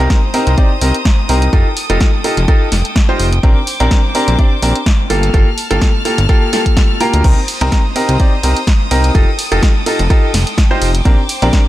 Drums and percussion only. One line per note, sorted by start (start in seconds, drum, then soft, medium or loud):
0.10 kick loud
0.10 snare loud
0.10 closed hi-hat soft
0.34 open hi-hat medium
0.47 closed hi-hat medium
0.58 kick loud
0.58 closed hi-hat soft
0.81 open hi-hat loud
0.94 closed hi-hat medium
1.05 kick loud
1.05 snare loud
1.05 closed hi-hat medium
1.29 open hi-hat medium
1.42 closed hi-hat medium
1.53 kick loud
1.53 closed hi-hat medium
1.77 open hi-hat loud
1.90 closed hi-hat medium
2.00 kick loud
2.00 snare loud
2.00 closed hi-hat medium
2.24 open hi-hat medium
2.37 closed hi-hat medium
2.48 kick loud
2.48 closed hi-hat medium
2.72 snare medium
2.72 open hi-hat loud
2.85 closed hi-hat medium
2.96 kick loud
2.96 snare loud
2.96 closed hi-hat medium
3.20 open hi-hat medium
3.33 closed hi-hat medium
3.43 kick loud
3.43 closed hi-hat medium
3.67 open hi-hat loud
3.80 closed hi-hat medium
3.91 kick loud
3.91 snare loud
3.91 closed hi-hat medium
4.15 open hi-hat medium
4.28 closed hi-hat medium
4.39 kick loud
4.39 closed hi-hat medium
4.62 open hi-hat loud
4.76 closed hi-hat medium
4.86 kick loud
4.86 snare loud
4.86 closed hi-hat medium
5.10 open hi-hat medium
5.23 closed hi-hat medium
5.34 kick loud
5.34 closed hi-hat medium
5.58 open hi-hat loud
5.71 closed hi-hat medium
5.81 kick loud
5.81 snare loud
5.81 closed hi-hat medium
6.05 open hi-hat medium
6.18 closed hi-hat medium
6.29 kick loud
6.29 closed hi-hat medium
6.53 snare medium
6.53 open hi-hat loud
6.66 kick medium
6.66 closed hi-hat medium
6.77 kick loud
6.77 snare loud
6.77 closed hi-hat medium
7.01 open hi-hat medium
7.14 closed hi-hat medium
7.24 kick loud
7.24 closed hi-hat medium
7.24 crash medium
7.24 ride medium
7.48 open hi-hat loud
7.48 ride medium
7.61 closed hi-hat medium
7.72 kick loud
7.72 snare loud
7.72 closed hi-hat medium
7.72 ride medium
7.96 open hi-hat medium
7.96 ride medium
8.09 closed hi-hat medium
8.20 kick loud
8.20 closed hi-hat medium
8.20 ride medium
8.43 open hi-hat loud
8.43 ride medium
8.56 closed hi-hat medium
8.67 kick loud
8.67 snare loud
8.67 closed hi-hat medium
8.67 ride medium
8.91 open hi-hat medium
8.91 ride medium
9.04 closed hi-hat medium
9.15 kick loud
9.15 closed hi-hat medium
9.15 ride medium
9.39 open hi-hat loud
9.39 ride medium
9.52 closed hi-hat medium
9.63 kick loud
9.63 snare loud
9.63 closed hi-hat medium
9.63 ride medium
9.86 open hi-hat medium
9.86 ride medium
9.99 closed hi-hat medium
10.10 kick loud
10.10 closed hi-hat medium
10.10 ride medium
10.34 snare medium
10.34 open hi-hat loud
10.34 ride medium
10.47 closed hi-hat medium
10.58 kick loud
10.58 snare loud
10.58 closed hi-hat medium
10.58 ride medium
10.82 open hi-hat medium
10.82 ride medium
10.95 closed hi-hat medium
11.05 kick loud
11.05 closed hi-hat medium
11.05 ride medium
11.29 open hi-hat loud
11.29 ride medium
11.42 closed hi-hat medium
11.53 kick loud
11.53 snare loud
11.53 closed hi-hat soft
11.53 ride medium